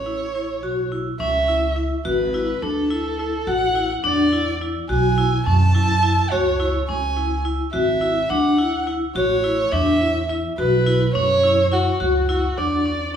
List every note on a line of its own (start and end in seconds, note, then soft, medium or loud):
0.00 0.63 A1 medium
0.00 0.87 C#5 medium
0.06 0.22 E4 medium
0.35 0.51 E4 medium
0.63 1.09 B1 medium
0.63 0.79 F#4 medium
0.92 1.08 E4 medium
1.20 1.90 C#2 medium
1.20 1.36 C#4 medium
1.20 1.73 E5 medium
1.48 1.64 E4 medium
1.76 1.92 E4 medium
2.05 2.52 G#1 medium
2.05 2.21 F#4 medium
2.05 2.64 B4 medium
2.34 2.50 E4 medium
2.62 3.32 D2 medium
2.62 2.78 D4 medium
2.62 3.49 A4 medium
2.90 3.06 E4 medium
3.19 3.35 E4 medium
3.47 3.94 A1 medium
3.47 3.63 F#4 medium
3.47 3.90 F#5 medium
3.75 3.92 E4 medium
4.04 4.74 E2 medium
4.04 4.20 D4 medium
4.04 4.57 D5 medium
4.33 4.49 E4 medium
4.61 4.77 E4 medium
4.89 5.36 B1 medium
4.89 5.05 F#4 medium
4.89 5.43 G#5 medium
5.18 5.34 E4 medium
5.46 6.16 F#2 medium
5.46 5.62 C#4 medium
5.46 6.33 A5 loud
5.75 5.91 E4 medium
6.03 6.19 E4 medium
6.31 6.78 C#2 medium
6.31 6.48 F#4 medium
6.31 6.74 C#5 medium
6.60 6.76 E4 medium
6.88 7.58 C#2 medium
6.88 7.05 C#4 medium
6.88 7.41 G#5 medium
7.17 7.33 E4 medium
7.45 7.61 E4 medium
7.73 8.20 G#1 loud
7.73 7.89 F#4 medium
7.73 8.32 E5 medium
8.01 8.17 E4 medium
8.30 9.00 D2 medium
8.30 8.46 D4 medium
8.30 8.87 F#5 medium
8.59 8.75 E4 medium
8.87 9.03 E4 medium
9.15 9.62 A1 loud
9.15 9.32 F#4 medium
9.15 9.74 C#5 medium
9.44 9.60 E4 medium
9.72 10.42 E2 medium
9.72 9.88 D4 medium
9.72 10.29 E5 loud
10.01 10.17 E4 medium
10.30 10.46 E4 medium
10.58 11.05 B1 loud
10.58 10.74 F#4 medium
10.58 11.11 B4 medium
10.86 11.02 E4 medium
11.14 11.85 F#2 medium
11.14 11.31 C#4 medium
11.14 11.68 C#5 loud
11.43 11.59 E4 medium
11.72 11.88 E4 medium
11.72 12.25 F#4 medium
12.00 12.47 C#2 medium
12.00 12.16 F#4 medium
12.29 12.45 E4 medium
12.29 12.59 F#4 medium
12.58 13.16 E2 medium
12.58 12.74 D4 medium
12.58 13.14 D5 medium
12.86 13.02 C#4 medium